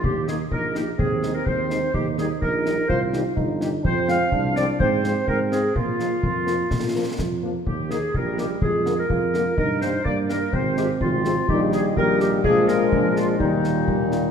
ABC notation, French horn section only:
X:1
M:2/4
L:1/8
Q:1/4=126
K:Eb
V:1 name="French horn section" clef=bass
z [E,B,E] z [E,B,E] | z [E,A,E] z [E,A,E] | z [E,G,E] z [E,G,E] | z [E,G,E] z [E,G,E] |
z [F,A,C] z [F,A,C] | z [F,A,C] z [F,A,C] | z [F,B,] z [F,B,] | z [F,B,] z [F,B,] |
z [E,B,] z [E,B,] | z [D,A,B,] z [D,A,B,] | z [E,G,B,] z [E,G,B,] | z [C,F,A,] z [C,F,A,] |
[B,,E,G,]2 [B,,E,G,]2 | [B,,F,A,]4 | [B,,E,G,]4 |]